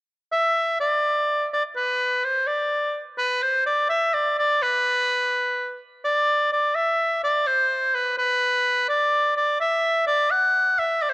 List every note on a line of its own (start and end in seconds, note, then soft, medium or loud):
0.32 0.76 E5 loud
0.80 1.47 D5 medium
1.53 1.63 D5 medium
1.76 2.26 B4 medium
2.24 2.48 C5 medium
2.47 3.00 D5 medium
3.18 3.44 B4 medium
3.42 3.66 C5 medium
3.66 3.88 D5 medium
3.89 4.15 E5 loud
4.14 4.37 D5 medium
4.38 4.64 D5 loud
4.62 5.80 B4 medium
6.04 6.48 D5 medium
6.52 6.77 D5 medium
6.75 7.22 E5 medium
7.24 7.48 D5 medium
7.47 7.96 C5 medium
7.94 8.17 B4 medium
8.18 8.85 B4 medium
8.89 9.33 D5 medium
9.37 9.58 D5 medium
9.60 10.04 E5 medium
10.07 10.32 D5 medium
10.31 10.80 F#5 loud
10.78 11.04 E5 medium
11.02 11.11 D5 medium
11.09 11.13 C5 medium